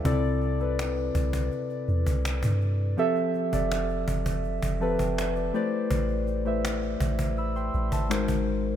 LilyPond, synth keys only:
\new Staff \with { instrumentName = "Synth keys" } { \time 4/4 \key a \minor \tempo 4 = 82 << { r1 | r2 r8 a''16 g''16 e''16 d''8. | r2 <b'' e'''>16 <g'' c'''>8 <e'' a''>8 r8. | } \\ { <c c' e' a' d''>8. <c c' e' a' b'>4.~ <c c' e' a' b'>16 r4. | <f c' g' a' e''>8. <f c' g' a' d''>4.~ <f c' g' a' d''>16 <f c' g' a' b'>4 <a e' g' b' c'' d''>8~ | <a e' g' b' c'' d''>8. <a e' g' b' c'' e''>4.~ <a e' g' b' c'' e''>16 r8 <gis dis' fis' ais' bis'>4 | } >> }